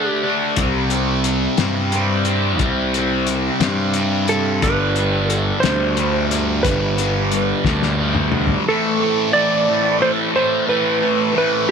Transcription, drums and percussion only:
0.56 kick loud
0.56 closed hi-hat medium
0.90 closed hi-hat medium
1.24 closed hi-hat medium
1.57 snare medium
1.57 closed hi-hat medium
1.92 closed hi-hat medium
2.25 closed hi-hat medium
2.59 kick loud
2.59 closed hi-hat medium
2.94 closed hi-hat medium
3.27 closed hi-hat medium
3.61 snare loud
3.61 closed hi-hat medium
3.94 closed hi-hat medium
4.28 closed hi-hat medium
4.62 kick loud
4.62 closed hi-hat medium
4.96 closed hi-hat medium
5.30 closed hi-hat medium
5.63 snare loud
5.63 closed hi-hat medium
5.97 closed hi-hat medium
6.31 closed hi-hat medium
6.64 kick loud
6.64 closed hi-hat medium
6.98 closed hi-hat medium
7.32 closed hi-hat medium
7.65 kick medium
7.65 snare medium
7.83 snare soft
8.15 mid tom medium
8.32 mid tom medium
8.47 floor tom medium

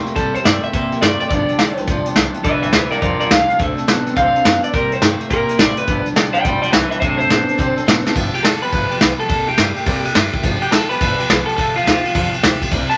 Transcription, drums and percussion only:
0.06 closed hi-hat medium
0.16 kick loud
0.16 closed hi-hat medium
0.35 closed hi-hat medium
0.45 snare loud
0.45 closed hi-hat medium
0.63 closed hi-hat medium
0.73 kick loud
0.73 closed hi-hat medium
0.92 closed hi-hat medium
1.02 snare loud
1.02 closed hi-hat medium
1.20 closed hi-hat medium
1.30 kick loud
1.30 closed hi-hat medium
1.49 closed hi-hat medium
1.59 snare medium
1.59 closed hi-hat medium
1.77 closed hi-hat medium
1.87 kick loud
1.87 closed hi-hat medium
2.06 closed hi-hat medium
2.16 snare loud
2.16 closed hi-hat medium
2.34 closed hi-hat medium
2.44 kick loud
2.44 closed hi-hat loud
2.63 closed hi-hat medium
2.73 snare loud
2.73 closed hi-hat medium
2.92 closed hi-hat medium
3.02 kick loud
3.02 closed hi-hat medium
3.21 closed hi-hat medium
3.31 snare loud
3.31 closed hi-hat medium
3.50 closed hi-hat medium
3.60 kick loud
3.60 closed hi-hat medium
3.78 closed hi-hat medium
3.88 snare loud
3.88 closed hi-hat medium
4.07 closed hi-hat medium
4.16 kick loud
4.16 closed hi-hat medium
4.35 closed hi-hat medium
4.45 snare loud
4.45 closed hi-hat medium
4.63 closed hi-hat medium
4.74 kick loud
4.74 closed hi-hat medium
4.92 closed hi-hat medium
5.02 snare loud
5.02 closed hi-hat medium
5.21 closed hi-hat medium
5.30 kick loud
5.30 closed hi-hat medium
5.49 closed hi-hat medium
5.59 snare loud
5.59 closed hi-hat medium
5.77 closed hi-hat medium
5.87 kick loud
5.87 closed hi-hat medium
6.06 closed hi-hat medium
6.16 snare loud
6.16 closed hi-hat medium
6.35 closed hi-hat medium
6.45 kick loud
6.45 closed hi-hat medium
6.63 closed hi-hat medium
6.73 snare loud
6.73 closed hi-hat medium
6.92 closed hi-hat medium
7.02 kick loud
7.02 closed hi-hat medium
7.20 closed hi-hat medium
7.30 snare medium
7.30 closed hi-hat medium
7.49 closed hi-hat medium
7.59 kick loud
7.59 closed hi-hat medium
7.78 closed hi-hat medium
7.88 snare loud
7.88 closed hi-hat medium
8.06 snare medium
8.16 kick loud
8.16 ride medium
8.34 ride medium
8.44 snare loud
8.44 ride medium
8.62 ride medium
8.73 kick loud
8.73 ride medium
8.91 ride medium
9.01 snare loud
9.01 ride medium
9.20 ride medium
9.29 kick loud
9.29 ride medium
9.48 ride medium
9.58 snare medium
9.58 ride medium
9.76 ride medium
9.86 kick loud
9.86 ride medium
10.05 ride medium
10.15 snare loud
10.15 ride medium
10.33 kick loud
10.33 ride medium
10.43 kick loud
10.43 ride medium
10.62 ride medium
10.72 snare loud
10.72 ride medium
10.91 ride medium
11.01 kick loud
11.01 ride medium
11.20 ride medium
11.30 snare loud
11.30 ride medium
11.49 ride medium
11.58 kick loud
11.58 ride medium
11.77 ride medium
11.87 snare medium
11.87 ride medium
12.05 ride medium
12.15 kick loud
12.15 ride medium
12.34 ride medium
12.43 snare loud
12.43 ride medium
12.62 kick medium
12.62 ride medium
12.72 kick loud
12.72 ride medium
12.91 ride medium

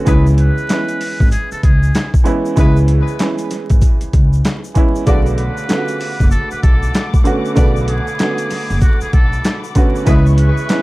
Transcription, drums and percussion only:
0.07 kick loud
0.07 closed hi-hat loud
0.07 shaker medium
0.27 shaker medium
0.38 closed hi-hat medium
0.58 shaker soft
0.69 snare loud
0.69 clap loud
0.69 closed hi-hat loud
0.69 shaker medium
0.88 closed hi-hat medium
0.88 shaker soft
1.01 open hi-hat medium
1.01 shaker soft
1.20 kick loud
1.20 shaker soft
1.31 closed hi-hat medium
1.31 shaker medium
1.52 shaker medium
1.63 kick loud
1.63 closed hi-hat medium
1.83 shaker soft
1.95 snare loud
1.95 clap loud
1.95 closed hi-hat medium
1.95 shaker medium
2.14 kick loud
2.14 shaker medium
2.26 closed hi-hat medium
2.26 shaker medium
2.45 shaker medium
2.57 kick loud
2.57 closed hi-hat loud
2.57 shaker medium
2.77 shaker medium
2.88 closed hi-hat medium
3.08 shaker soft
3.19 snare loud
3.19 clap loud
3.19 closed hi-hat loud
3.19 shaker medium
3.38 closed hi-hat medium
3.38 shaker soft
3.51 snare soft
3.51 closed hi-hat medium
3.51 shaker soft
3.70 kick loud
3.70 closed hi-hat medium
3.70 shaker soft
3.81 kick medium
3.81 closed hi-hat medium
3.81 shaker medium
4.01 closed hi-hat medium
4.01 shaker medium
4.13 kick loud
4.13 closed hi-hat medium
4.33 shaker soft
4.45 snare loud
4.45 clap medium
4.45 closed hi-hat medium
4.45 shaker medium
4.64 shaker medium
4.75 kick medium
4.75 closed hi-hat medium
4.75 shaker medium
4.96 shaker medium
5.07 kick loud
5.07 closed hi-hat loud
5.07 shaker medium
5.26 shaker medium
5.38 closed hi-hat medium
5.57 shaker medium
5.69 snare loud
5.69 clap medium
5.69 closed hi-hat loud
5.69 shaker medium
5.88 closed hi-hat medium
5.88 shaker soft
6.00 open hi-hat medium
6.00 shaker soft
6.20 kick loud
6.20 shaker soft
6.31 closed hi-hat medium
6.31 shaker medium
6.51 shaker medium
6.63 kick loud
6.63 closed hi-hat medium
6.83 shaker medium
6.94 snare loud
6.94 clap loud
6.94 closed hi-hat medium
6.94 shaker medium
7.14 kick medium
7.14 shaker medium
7.25 closed hi-hat medium
7.25 shaker medium
7.45 shaker medium
7.56 kick loud
7.56 closed hi-hat loud
7.56 shaker medium
7.76 shaker medium
7.88 closed hi-hat medium
8.07 shaker medium
8.19 snare loud
8.19 clap loud
8.19 closed hi-hat loud
8.19 shaker medium
8.38 closed hi-hat medium
8.38 shaker medium
8.50 snare soft
8.50 open hi-hat medium
8.50 shaker soft
8.70 shaker soft
8.81 kick loud
8.81 closed hi-hat medium
8.81 shaker medium
9.01 shaker medium
9.13 kick loud
9.13 closed hi-hat medium
9.33 shaker medium
9.45 snare loud
9.45 clap loud
9.45 closed hi-hat loud
9.45 shaker medium
9.64 shaker medium
9.75 kick medium
9.75 closed hi-hat medium
9.75 shaker soft
9.95 shaker medium
10.07 kick loud
10.07 closed hi-hat loud
10.07 shaker medium
10.26 shaker medium
10.38 closed hi-hat medium
10.57 shaker soft
10.69 snare loud
10.69 clap loud
10.69 closed hi-hat loud
10.69 shaker medium

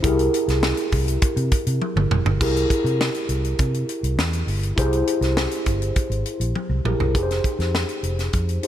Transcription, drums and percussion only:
0.04 kick loud
0.04 closed hi-hat medium
0.19 closed hi-hat medium
0.34 closed hi-hat medium
0.48 snare soft
0.48 closed hi-hat soft
0.63 snare loud
0.77 closed hi-hat medium
0.92 kick medium
0.92 open hi-hat medium
1.08 closed hi-hat medium
1.22 kick loud
1.22 closed hi-hat medium
1.37 closed hi-hat soft
1.51 kick medium
1.51 closed hi-hat medium
1.67 closed hi-hat medium
1.82 high tom medium
1.97 mid tom medium
2.11 mid tom medium
2.26 floor tom medium
2.41 kick loud
2.41 crash medium
2.56 closed hi-hat medium
2.70 kick medium
2.70 closed hi-hat medium
2.86 closed hi-hat soft
3.01 snare loud
3.14 closed hi-hat soft
3.29 closed hi-hat medium
3.44 closed hi-hat soft
3.59 kick medium
3.59 closed hi-hat medium
3.74 closed hi-hat soft
3.89 closed hi-hat medium
4.04 closed hi-hat medium
4.19 snare loud
4.33 closed hi-hat medium
4.48 open hi-hat medium
4.63 closed hi-hat medium
4.78 kick loud
4.78 closed hi-hat medium
4.93 closed hi-hat medium
5.07 closed hi-hat medium
5.22 snare soft
5.22 closed hi-hat soft
5.37 snare loud
5.51 closed hi-hat medium
5.66 kick medium
5.66 closed hi-hat medium
5.82 closed hi-hat medium
5.96 kick medium
5.96 closed hi-hat medium
6.11 closed hi-hat soft
6.25 closed hi-hat medium
6.41 closed hi-hat medium
6.56 high tom medium
6.85 mid tom medium
7.00 floor tom medium
7.15 kick medium
7.15 closed hi-hat medium
7.31 snare soft
7.31 closed hi-hat soft
7.44 kick medium
7.44 closed hi-hat medium
7.60 snare soft
7.60 closed hi-hat soft
7.75 snare medium
7.89 closed hi-hat soft
8.04 closed hi-hat medium
8.19 snare soft
8.19 closed hi-hat soft
8.33 kick medium
8.33 closed hi-hat medium
8.49 closed hi-hat soft
8.63 closed hi-hat medium

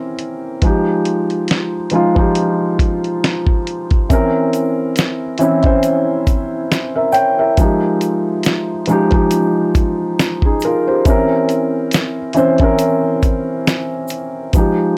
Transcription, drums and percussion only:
0.19 closed hi-hat medium
0.62 kick loud
0.62 closed hi-hat medium
1.05 closed hi-hat medium
1.30 closed hi-hat soft
1.48 snare medium
1.48 closed hi-hat medium
1.90 closed hi-hat medium
2.16 kick medium
2.35 closed hi-hat medium
2.79 kick medium
2.79 closed hi-hat medium
3.04 closed hi-hat soft
3.24 snare loud
3.24 closed hi-hat medium
3.47 kick medium
3.67 closed hi-hat medium
3.91 kick medium
3.91 closed hi-hat soft
4.10 kick loud
4.10 closed hi-hat medium
4.10 shaker medium
4.53 closed hi-hat medium
4.53 shaker soft
4.96 snare loud
4.96 closed hi-hat medium
4.96 shaker medium
5.38 closed hi-hat medium
5.38 shaker soft
5.63 kick medium
5.63 closed hi-hat soft
5.83 closed hi-hat medium
5.83 shaker medium
6.27 kick medium
6.27 closed hi-hat medium
6.27 shaker soft
6.72 snare loud
6.72 closed hi-hat medium
6.72 shaker medium
7.12 closed hi-hat medium
7.12 shaker medium
7.57 kick loud
7.57 closed hi-hat medium
7.57 shaker medium
8.01 closed hi-hat medium
8.01 shaker soft
8.43 snare loud
8.43 closed hi-hat medium
8.43 shaker medium
8.86 closed hi-hat medium
8.86 shaker soft
9.11 kick medium
9.11 closed hi-hat soft
9.31 closed hi-hat medium
9.31 shaker medium
9.75 kick medium
9.75 closed hi-hat medium
9.75 shaker soft
10.19 snare loud
10.19 closed hi-hat medium
10.19 shaker medium
10.42 kick medium
10.60 closed hi-hat medium
10.60 shaker medium
11.05 kick loud
11.05 closed hi-hat medium
11.05 shaker medium
11.49 closed hi-hat medium
11.49 shaker soft
11.91 snare loud
11.91 closed hi-hat medium
11.91 shaker medium
12.33 closed hi-hat medium
12.33 shaker medium
12.58 kick medium
12.58 closed hi-hat soft
12.79 closed hi-hat medium
12.79 shaker medium
13.23 kick medium
13.23 closed hi-hat medium
13.23 shaker soft
13.67 snare loud
13.67 closed hi-hat medium
13.67 shaker medium
14.08 closed hi-hat medium
14.08 shaker medium
14.53 kick loud
14.53 closed hi-hat medium
14.53 shaker medium

